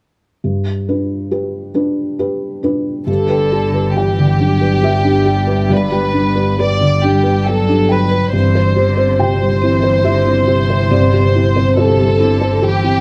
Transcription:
0.44 G2
0.88 D4 B4
1.31 G4 B4
1.75 D4 B4
2.19 G4 B4
2.63 D4 B4
3.07 G1 G2 D3 B3 D4 G4 A4 D5
3.29 B4 G5
3.52 G4 D5
3.74 G4 B4
3.96 E3 G4 D5 G5
4.18 D3 D5
4.40 F#3 D4 G4
4.61 B4
4.83 G3 G4 B4 E5
5.04 D4 G4
5.25 G4 G5
5.47 B4 G5
5.69 G2 G4 B4 D5
5.91 G4 G5
6.13 D4 D5
6.35 G4 B4
6.59 G3 G4 B4 D5
6.81 D3 D5
7.03 D4 G4
7.23 B4
7.46 F#3 A4 B4 G5
7.68 D4 G4
7.89 B4 G5
8.11 B4 G5
8.33 G1 G2 E3 C4 E4 C5
8.55 C5
8.76 D3 G4
8.97 C4 C5
9.19 C3 G4 C5 G5
9.41 G3 G4
9.62 E3 C4 E4
9.83 C5
10.04 D3 E4 G4 E5
10.26 C4 E4
10.47 C3 G4 C5
10.70 C5
10.90 G2 C4 D5
11.13 G4 C5
11.34 E4 G4
11.56 C4 C5
11.76 C3 G4 A4 C5
11.99 G3 G4
12.19 D3 C4 E4
12.41 C5
12.61 E3 E4 G4
12.83 C4 E4

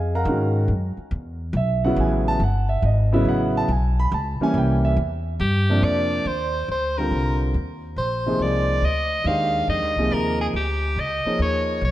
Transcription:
Already playing: F2 G#4 D#5 F5 G#5
0.15 A#4 F5 F#5 A#5
0.25 G#2 D#3 G#3 C#4 F#4
0.68 F#2
0.97 muted upright bass stroke
1.11 E2
1.53 B1 E5
1.84 C#3 F#3 B3 E4 F#5
1.96 A1 G#5
2.28 A5
2.40 G1 F#5
2.69 E5
2.82 G#1 D#5
3.12 C#3 F#3 B3 E4 E5
3.25 A1 F#5
3.57 A5
3.68 B1 G#5
4.00 B5
4.12 C#2 A5
4.40 E3 G3 A#3 C#4 G#5, muted upright bass stroke
4.54 C2 G5
4.85 E5
4.96 E2
5.40 G2 G4
5.69 C3 F3 A#3 D4
5.82 F2 D5
6.25 D#2 C5
6.68 D2 C5
6.98 D3 G3 C4 F4 A#4
7.11 C2
7.54 D#2
7.96 A#1 C5
8.26 C3 F3 A#3 D#4 G#4
8.39 C2 D5
8.82 D2 D#5
9.24 D#2 D#3 G#3 D4 G4 C5 F5
9.68 F2 D#5
9.82 D#2
9.96 C2 C3 F3 A#3 D#4 G#4
10.11 D#2 A#4
10.41 G#4
10.53 D2 G4
10.96 C#2 D#5
11.25 F3 A#3 D#4 G#4 C#5, muted upright bass stroke
11.39 D#2 C#5
11.81 B1 C#5

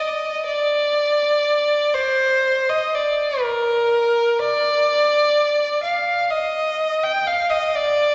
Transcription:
Already playing: D#5
0.47 D5
1.94 C5
2.69 D#5
2.95 D5
3.41 A#4
4.39 D5
5.84 F5
6.31 D#5
7.04 G5
7.28 F5
7.50 D#5
7.75 D5

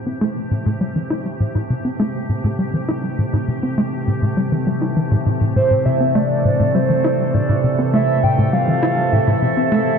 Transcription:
Already playing: C3 E3 A3 C4 G4
0.06 C4
0.21 A3
0.51 A2
0.66 A2
0.81 G3
0.96 E3
1.10 E4
1.40 A2
1.55 A2
1.70 C3
1.85 C4
1.99 A3
2.29 A2
2.44 A2
2.59 G3
2.74 E3
2.89 E4
3.18 A2
3.33 A2
3.48 C3
3.63 C4
3.78 A3
4.07 A2
4.22 A2
4.37 G3
4.52 E3
4.67 G3
4.81 E4
4.96 E3
5.11 A2
5.26 A2
5.41 A2
5.56 A2 A4 C5
5.71 A2
5.85 C3 E5
6.00 C4
6.15 A3 D5
6.45 A2
6.60 A2
6.75 G3 C5
6.90 E3
7.04 E4
7.34 A2 D5
7.49 A2
7.64 C3
7.79 C4
7.93 A3 E5
8.23 A2 G5
8.38 A2
8.53 G3 F5
8.68 E3
8.83 E4
9.12 A2 E5
9.27 A2
9.42 C3
9.57 C4
9.72 A3 E5

